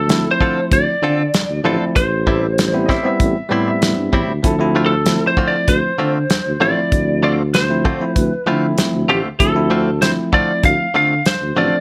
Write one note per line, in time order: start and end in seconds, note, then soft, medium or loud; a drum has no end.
0.00 0.28 D2 medium
0.00 0.31 A4 medium
0.08 0.93 F3 medium
0.08 0.93 A3 medium
0.08 0.94 C4 medium
0.08 0.94 E4 medium
0.08 snare loud
0.08 closed hi-hat medium
0.31 0.73 C5 medium
0.41 0.59 D3 medium
0.41 0.59 C4 medium
0.41 0.60 F4 medium
0.41 0.60 A4 medium
0.41 kick medium
0.71 0.84 D2 loud
0.71 2.00 D5 loud
0.71 kick loud
0.71 closed hi-hat medium
1.02 1.28 D3 medium
1.02 1.21 D3 medium
1.02 1.22 C4 medium
1.02 1.22 F4 medium
1.02 1.22 A4 medium
1.34 1.41 D2 soft
1.34 snare loud
1.34 closed hi-hat medium
1.49 1.62 D2 medium
1.63 1.78 A1 medium
1.63 1.83 D3 medium
1.63 1.95 F3 medium
1.63 1.95 A3 medium
1.63 1.96 C4 medium
1.63 1.84 C4 medium
1.63 1.96 E4 medium
1.63 1.84 F4 medium
1.63 1.84 A4 medium
1.80 1.88 D2 soft
1.96 2.99 A1 medium
1.96 3.16 C5 medium
1.96 kick medium
1.96 closed hi-hat medium
2.27 2.45 A2 medium
2.27 2.46 G3 medium
2.27 2.46 C4 medium
2.27 2.46 E4 medium
2.27 kick medium
2.58 snare medium
2.58 closed hi-hat medium
2.72 2.94 G3 medium
2.72 2.94 B3 medium
2.72 2.95 C4 medium
2.72 2.95 E4 medium
2.85 3.07 A2 medium
2.85 3.08 G3 medium
2.85 3.08 C4 medium
2.85 2.89 D#5 medium
2.85 kick medium
2.90 3.08 E4 medium
2.90 3.04 E5 medium
2.90 snare soft
3.03 3.35 G3 medium
3.03 3.36 B3 medium
3.03 3.36 C4 medium
3.03 3.36 E4 medium
3.03 3.65 E5 medium
3.20 3.33 A1 loud
3.20 kick loud
3.20 closed hi-hat medium
3.49 3.77 A2 medium
3.49 3.69 A2 medium
3.49 4.13 G3 medium
3.49 3.70 G3 medium
3.49 4.14 B3 medium
3.49 4.14 C4 medium
3.49 3.70 C4 medium
3.49 4.14 E4 medium
3.49 3.70 E4 medium
3.68 4.42 E5 medium
3.82 3.96 A2 medium
3.82 snare loud
3.82 closed hi-hat medium
3.98 4.12 G2 medium
4.13 4.27 E2 medium
4.13 4.31 A2 medium
4.13 4.32 G3 medium
4.13 4.32 C4 medium
4.13 4.32 E4 medium
4.13 kick medium
4.28 4.42 D2 medium
4.43 5.24 D2 medium
4.43 4.54 F3 medium
4.43 4.54 A3 medium
4.43 4.54 C4 medium
4.43 4.55 E4 medium
4.43 4.75 A4 medium
4.43 kick loud
4.43 closed hi-hat medium
4.58 4.91 F3 medium
4.58 4.91 A3 medium
4.58 4.91 C4 medium
4.58 4.92 E4 loud
4.75 4.94 D3 medium
4.75 4.94 A3 medium
4.75 4.94 C4 medium
4.75 4.94 F4 medium
4.86 5.27 A4 medium
5.06 5.90 F3 medium
5.06 5.90 A3 medium
5.06 5.91 C4 medium
5.06 5.91 E4 medium
5.06 snare medium
5.06 closed hi-hat medium
5.27 5.48 C5 medium
5.37 5.56 D3 medium
5.37 5.56 A3 medium
5.37 5.56 C4 medium
5.37 5.56 F4 medium
5.37 kick medium
5.48 5.69 D5 medium
5.68 5.81 D2 loud
5.68 6.64 C5 medium
5.68 kick loud
5.68 closed hi-hat medium
5.98 6.17 D3 medium
5.98 6.25 D3 medium
5.98 6.18 A3 medium
5.98 6.18 C4 medium
5.98 6.18 F4 medium
6.30 6.38 D2 soft
6.30 snare loud
6.30 closed hi-hat medium
6.45 6.58 D2 medium
6.60 6.74 A1 medium
6.60 6.79 D3 medium
6.60 7.35 F3 medium
6.60 7.35 A3 medium
6.60 6.80 A3 medium
6.60 6.80 C4 medium
6.60 7.35 C4 medium
6.60 7.35 E4 medium
6.60 6.80 F4 medium
6.60 7.23 D5 loud
6.76 6.84 D2 soft
6.92 7.95 D2 medium
6.92 kick loud
6.92 closed hi-hat medium
7.23 7.41 D3 medium
7.23 7.42 A3 medium
7.23 7.42 C4 medium
7.23 7.42 F4 medium
7.23 7.32 D5 medium
7.54 8.15 C5 medium
7.54 snare medium
7.54 closed hi-hat soft
7.69 7.90 F3 medium
7.69 7.90 A3 medium
7.69 7.91 C4 medium
7.69 7.91 E4 medium
7.85 8.03 D3 medium
7.85 8.04 A3 medium
7.85 8.04 C4 medium
7.85 8.04 F4 medium
7.85 kick medium
7.99 8.32 F3 medium
7.99 8.32 A3 medium
7.99 8.32 C4 medium
7.99 8.33 E4 medium
8.15 8.29 D2 loud
8.15 8.43 B4 medium
8.15 kick loud
8.15 closed hi-hat medium
8.46 8.72 D3 medium
8.46 8.65 D3 medium
8.46 9.10 F3 medium
8.46 9.10 A3 medium
8.46 8.66 A3 medium
8.46 9.10 C4 medium
8.46 8.66 C4 medium
8.46 9.11 E4 loud
8.46 8.66 F4 medium
8.78 8.86 D2 soft
8.78 snare loud
8.78 closed hi-hat medium
8.93 9.06 D2 medium
9.09 9.22 A1 medium
9.09 9.27 D3 medium
9.09 9.28 A3 medium
9.09 9.28 C4 medium
9.09 9.28 F4 medium
9.09 9.18 G4 medium
9.25 9.32 D2 soft
9.39 10.20 D2 loud
9.39 9.50 F3 medium
9.39 9.50 A3 medium
9.39 9.50 C4 medium
9.39 9.51 E4 medium
9.39 10.01 A4 medium
9.39 kick loud
9.39 closed hi-hat medium
9.54 9.86 F3 medium
9.54 9.87 A3 medium
9.54 9.87 C4 medium
9.54 9.87 E4 medium
9.70 9.89 D3 medium
9.70 9.89 A3 medium
9.70 9.90 C4 medium
9.70 9.90 F4 medium
10.00 10.85 F3 medium
10.00 10.86 A3 medium
10.00 10.86 C4 medium
10.00 10.86 E4 medium
10.00 10.10 C5 medium
10.00 snare medium
10.00 closed hi-hat medium
10.33 10.51 D3 medium
10.33 10.52 A3 medium
10.33 10.52 C4 medium
10.33 10.52 F4 medium
10.33 10.65 D5 medium
10.33 kick medium
10.63 10.77 D2 loud
10.63 10.95 F5 loud
10.63 kick loud
10.63 closed hi-hat medium
10.94 11.13 D3 medium
10.94 11.20 D3 medium
10.94 11.13 A3 medium
10.94 11.14 C4 medium
10.94 11.14 F4 medium
10.94 11.27 F5 loud
11.26 11.34 D2 soft
11.26 11.58 C5 medium
11.26 snare loud
11.26 closed hi-hat medium
11.41 11.54 D2 medium
11.55 11.70 A1 medium
11.55 11.75 D3 medium
11.55 11.80 F3 medium
11.55 11.80 A3 medium
11.55 11.75 A3 medium
11.55 11.80 C4 medium
11.55 11.76 C4 medium
11.55 11.80 D4 medium
11.55 11.76 F4 medium
11.55 11.80 D5 medium
11.72 11.80 D2 soft